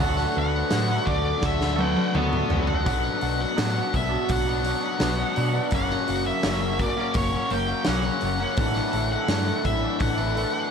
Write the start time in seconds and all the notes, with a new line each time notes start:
Already playing: D4
0.00 D2 D3 F#3 A3 B3 D4 F#4 A4 F#5, kick
0.18 snare
0.36 D2 B3 F#5
0.70 A2 D3 F#3 A3 D4, snare, open hi-hat
0.75 F#4
1.07 D2 D4 D5, kick
1.42 D2 D3 A3 D4 A4, kick, snare
1.46 F#4 E5
1.61 snare
1.76 D3 F#3 B3 F#4 A4, high tom
1.81 A3 D4 F#5 G5
1.97 high tom
2.14 D2 D3 F#3 A3 B3 D4 A4 B4 F#5, mid tom
2.18 F#4
2.33 mid tom
2.49 C#2 A3 D4 F#4, floor tom
2.67 floor tom
2.86 B1 B2 F#3 B3 D4 F#4 F#5, kick, open hi-hat
3.21 B1 F#3 B3 D4 F#4, open hi-hat
3.40 B3 D4 F#4 F#5
3.57 A2 B2 F#3 B3 D4 F#4, snare, open hi-hat
3.73 F#3 B3 D4
3.92 B1 F#3 B3 D4 F#4 E5, muted clean electric guitar stroke, kick, open hi-hat
4.10 F#3 B3 D4 F#4
4.29 B1 B3 F#5, kick, open hi-hat
4.45 B3 D4 F#4
4.50 F#3
4.63 B2 F#3 B3 D4 F#4, open hi-hat
4.81 B3 D4 F#4
4.99 B1 B2 F#3 B3 D4 F#4, snare, open hi-hat
5.17 F#3 B3 D4
5.36 B2 F#3 B3 D4, open hi-hat
5.53 F#3 B3 D4 F#4
5.71 F#1 F#2 C#3 F#3 A#3 C#4 F#4, kick, open hi-hat
5.75 F#5
5.90 snare
6.07 F#1 F#3 A#3 C#4 F#4, open hi-hat
6.25 F#3 A#3 C#4 F#4 E5
6.43 F#1 F#2 C#3 F#3 A#3 C#4 F#4, snare, open hi-hat
6.63 F#3 A#3 C#4
6.78 F#3 A#3 C#4 F#4 D5, muted clean electric guitar stroke, kick, open hi-hat
6.97 F#3 A#3 C#4 F#4
7.14 F#1 A#3 C#5, kick, open hi-hat
7.32 F#3 A#3 C#4 F#4
7.50 F#1 C#3 F#3 A#3 C#4 F#4 G5, open hi-hat
7.68 F#3 A#3 C#4 F#4
7.84 B1 F#2 C#3 F#3 A#3 C#4 F#5, snare, open hi-hat
7.89 F#4
8.03 F#3 A#3 C#4
8.21 F#1 C#3 F#3 A#3 C#4, open hi-hat
8.40 F#3 A#3 C#4 F#4
8.56 A1 A2 D3 E3 A3 D4 F#5, kick, open hi-hat
8.61 E4
8.75 snare
8.92 A1 D3 A3 A4, open hi-hat
8.96 D4 E4
9.12 A3 D4 E4 F#5
9.28 G2 A2 D3 E3 A3 D4 E4, snare, open hi-hat
9.47 E3 A3 D4
9.64 A1 D3 E3 A3 D4 E4 E5, muted clean electric guitar stroke, kick, open hi-hat
9.82 E3 A3 D4 E4
9.99 A1 A3 F#5, kick, open hi-hat
10.18 E3 A3 D4 E4
10.35 D3 E3 A3 D4 E4, open hi-hat
10.53 A3 D4 E4